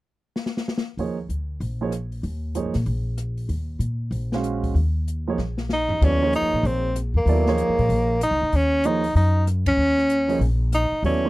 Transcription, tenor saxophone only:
0, 0, Header, 1, 2, 480
1, 0, Start_track
1, 0, Tempo, 314465
1, 1487, Time_signature, 4, 2, 24, 8
1, 17241, End_track
2, 0, Start_track
2, 0, Title_t, "Tenor saxophone"
2, 0, Program_c, 0, 66
2, 8746, Note_on_c, 0, 63, 83
2, 9221, Note_on_c, 0, 61, 87
2, 9244, Note_off_c, 0, 63, 0
2, 9677, Note_off_c, 0, 61, 0
2, 9702, Note_on_c, 0, 63, 97
2, 10171, Note_on_c, 0, 60, 83
2, 10194, Note_off_c, 0, 63, 0
2, 10632, Note_off_c, 0, 60, 0
2, 10949, Note_on_c, 0, 58, 87
2, 12488, Note_off_c, 0, 58, 0
2, 12565, Note_on_c, 0, 63, 93
2, 13063, Note_on_c, 0, 61, 88
2, 13086, Note_off_c, 0, 63, 0
2, 13519, Note_on_c, 0, 63, 98
2, 13542, Note_off_c, 0, 61, 0
2, 13976, Note_off_c, 0, 63, 0
2, 13985, Note_on_c, 0, 63, 87
2, 14424, Note_off_c, 0, 63, 0
2, 14769, Note_on_c, 0, 61, 95
2, 15920, Note_off_c, 0, 61, 0
2, 16399, Note_on_c, 0, 63, 85
2, 16830, Note_off_c, 0, 63, 0
2, 16872, Note_on_c, 0, 61, 78
2, 17241, Note_off_c, 0, 61, 0
2, 17241, End_track
0, 0, End_of_file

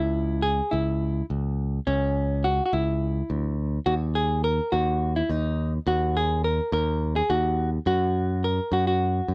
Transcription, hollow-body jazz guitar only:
0, 0, Header, 1, 2, 480
1, 0, Start_track
1, 0, Tempo, 570885
1, 1572, Time_signature, 7, 3, 24, 8
1, 7856, End_track
2, 0, Start_track
2, 0, Title_t, "Hollow-body jazz guitar"
2, 0, Program_c, 0, 26
2, 0, Note_on_c, 0, 64, 77
2, 341, Note_off_c, 0, 64, 0
2, 356, Note_on_c, 0, 68, 89
2, 598, Note_on_c, 0, 64, 67
2, 612, Note_off_c, 0, 68, 0
2, 1052, Note_off_c, 0, 64, 0
2, 1570, Note_on_c, 0, 61, 74
2, 2053, Note_on_c, 0, 66, 79
2, 2066, Note_off_c, 0, 61, 0
2, 2221, Note_off_c, 0, 66, 0
2, 2232, Note_on_c, 0, 66, 57
2, 2292, Note_off_c, 0, 66, 0
2, 2296, Note_on_c, 0, 64, 69
2, 2981, Note_off_c, 0, 64, 0
2, 3246, Note_on_c, 0, 66, 85
2, 3311, Note_off_c, 0, 66, 0
2, 3493, Note_on_c, 0, 68, 79
2, 3731, Note_off_c, 0, 68, 0
2, 3734, Note_on_c, 0, 70, 83
2, 3969, Note_on_c, 0, 66, 79
2, 3980, Note_off_c, 0, 70, 0
2, 4336, Note_off_c, 0, 66, 0
2, 4339, Note_on_c, 0, 64, 69
2, 4458, Note_off_c, 0, 64, 0
2, 4458, Note_on_c, 0, 63, 84
2, 4815, Note_off_c, 0, 63, 0
2, 4939, Note_on_c, 0, 66, 84
2, 5182, Note_off_c, 0, 66, 0
2, 5185, Note_on_c, 0, 68, 79
2, 5414, Note_off_c, 0, 68, 0
2, 5417, Note_on_c, 0, 70, 77
2, 5638, Note_off_c, 0, 70, 0
2, 5661, Note_on_c, 0, 70, 80
2, 6016, Note_off_c, 0, 70, 0
2, 6020, Note_on_c, 0, 68, 83
2, 6135, Note_on_c, 0, 66, 89
2, 6139, Note_off_c, 0, 68, 0
2, 6467, Note_off_c, 0, 66, 0
2, 6617, Note_on_c, 0, 66, 91
2, 7099, Note_on_c, 0, 70, 77
2, 7107, Note_off_c, 0, 66, 0
2, 7341, Note_off_c, 0, 70, 0
2, 7341, Note_on_c, 0, 66, 80
2, 7447, Note_off_c, 0, 66, 0
2, 7462, Note_on_c, 0, 66, 76
2, 7856, Note_off_c, 0, 66, 0
2, 7856, End_track
0, 0, End_of_file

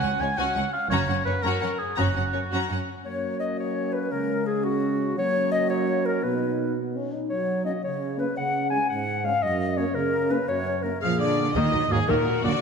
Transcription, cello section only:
0, 0, Header, 1, 2, 480
1, 0, Start_track
1, 0, Key_signature, 6, "major"
1, 0, Tempo, 354610
1, 1232, Time_signature, 6, 3, 24, 8
1, 17072, End_track
2, 0, Start_track
2, 0, Title_t, "Cello section"
2, 0, Program_c, 0, 48
2, 41, Note_on_c, 0, 37, 35
2, 137, Note_off_c, 0, 37, 0
2, 281, Note_on_c, 0, 37, 34
2, 376, Note_off_c, 0, 37, 0
2, 513, Note_on_c, 0, 37, 53
2, 609, Note_off_c, 0, 37, 0
2, 757, Note_on_c, 0, 37, 40
2, 852, Note_off_c, 0, 37, 0
2, 1233, Note_on_c, 0, 42, 56
2, 1328, Note_off_c, 0, 42, 0
2, 1459, Note_on_c, 0, 42, 36
2, 1557, Note_off_c, 0, 42, 0
2, 1706, Note_on_c, 0, 42, 37
2, 1803, Note_off_c, 0, 42, 0
2, 1950, Note_on_c, 0, 42, 48
2, 2047, Note_off_c, 0, 42, 0
2, 2195, Note_on_c, 0, 42, 35
2, 2291, Note_off_c, 0, 42, 0
2, 2683, Note_on_c, 0, 42, 43
2, 2779, Note_off_c, 0, 42, 0
2, 2921, Note_on_c, 0, 42, 30
2, 3017, Note_off_c, 0, 42, 0
2, 3171, Note_on_c, 0, 42, 29
2, 3266, Note_off_c, 0, 42, 0
2, 3410, Note_on_c, 0, 42, 38
2, 3506, Note_off_c, 0, 42, 0
2, 3657, Note_on_c, 0, 42, 29
2, 3752, Note_off_c, 0, 42, 0
2, 14920, Note_on_c, 0, 53, 62
2, 15144, Note_off_c, 0, 53, 0
2, 15162, Note_on_c, 0, 50, 55
2, 15636, Note_off_c, 0, 50, 0
2, 15641, Note_on_c, 0, 51, 70
2, 16112, Note_off_c, 0, 51, 0
2, 16122, Note_on_c, 0, 44, 59
2, 16356, Note_off_c, 0, 44, 0
2, 16360, Note_on_c, 0, 46, 54
2, 16828, Note_off_c, 0, 46, 0
2, 16841, Note_on_c, 0, 50, 60
2, 16936, Note_off_c, 0, 50, 0
2, 17072, End_track
0, 0, End_of_file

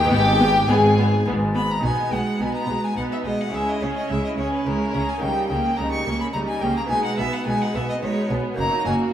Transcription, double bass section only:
0, 0, Header, 1, 2, 480
1, 0, Start_track
1, 0, Key_signature, 5, "minor"
1, 0, Tempo, 571973
1, 88, Time_signature, 3, 2, 24, 8
1, 2967, Tempo, 561272
1, 7753, End_track
2, 0, Start_track
2, 0, Title_t, "Double bass section"
2, 0, Program_c, 0, 48
2, 90, Note_on_c, 0, 32, 91
2, 517, Note_off_c, 0, 32, 0
2, 575, Note_on_c, 0, 32, 81
2, 1003, Note_off_c, 0, 32, 0
2, 1060, Note_on_c, 0, 32, 79
2, 1484, Note_off_c, 0, 32, 0
2, 1540, Note_on_c, 0, 35, 44
2, 1607, Note_off_c, 0, 35, 0
2, 1779, Note_on_c, 0, 35, 37
2, 1846, Note_off_c, 0, 35, 0
2, 2017, Note_on_c, 0, 35, 41
2, 2084, Note_off_c, 0, 35, 0
2, 2256, Note_on_c, 0, 35, 39
2, 2323, Note_off_c, 0, 35, 0
2, 2495, Note_on_c, 0, 35, 42
2, 2562, Note_off_c, 0, 35, 0
2, 2731, Note_on_c, 0, 35, 39
2, 2798, Note_off_c, 0, 35, 0
2, 2969, Note_on_c, 0, 37, 48
2, 3037, Note_off_c, 0, 37, 0
2, 3209, Note_on_c, 0, 37, 39
2, 3278, Note_off_c, 0, 37, 0
2, 3451, Note_on_c, 0, 37, 43
2, 3519, Note_off_c, 0, 37, 0
2, 3689, Note_on_c, 0, 37, 42
2, 3757, Note_off_c, 0, 37, 0
2, 3931, Note_on_c, 0, 37, 42
2, 3999, Note_off_c, 0, 37, 0
2, 4172, Note_on_c, 0, 37, 41
2, 4240, Note_off_c, 0, 37, 0
2, 4410, Note_on_c, 0, 37, 51
2, 4479, Note_off_c, 0, 37, 0
2, 4651, Note_on_c, 0, 37, 42
2, 4719, Note_off_c, 0, 37, 0
2, 4892, Note_on_c, 0, 37, 46
2, 4960, Note_off_c, 0, 37, 0
2, 5131, Note_on_c, 0, 37, 43
2, 5199, Note_off_c, 0, 37, 0
2, 5369, Note_on_c, 0, 37, 45
2, 5437, Note_off_c, 0, 37, 0
2, 5609, Note_on_c, 0, 37, 41
2, 5678, Note_off_c, 0, 37, 0
2, 5847, Note_on_c, 0, 35, 51
2, 5915, Note_off_c, 0, 35, 0
2, 6089, Note_on_c, 0, 35, 43
2, 6158, Note_off_c, 0, 35, 0
2, 6328, Note_on_c, 0, 35, 47
2, 6397, Note_off_c, 0, 35, 0
2, 6568, Note_on_c, 0, 35, 49
2, 6637, Note_off_c, 0, 35, 0
2, 6808, Note_on_c, 0, 35, 49
2, 6877, Note_off_c, 0, 35, 0
2, 7046, Note_on_c, 0, 35, 48
2, 7115, Note_off_c, 0, 35, 0
2, 7288, Note_on_c, 0, 30, 57
2, 7356, Note_off_c, 0, 30, 0
2, 7528, Note_on_c, 0, 30, 51
2, 7596, Note_off_c, 0, 30, 0
2, 7753, End_track
0, 0, End_of_file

